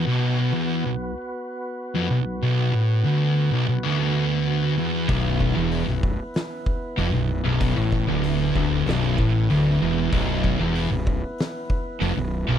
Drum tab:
HH |--------|--------|o-o-o-o-|o-o-o-o-|
SD |--------|--------|----o---|----o---|
BD |--------|--------|oo-o-o--|oo-o-o--|

HH |o-o-o-o-|
SD |----o---|
BD |oo-o-o--|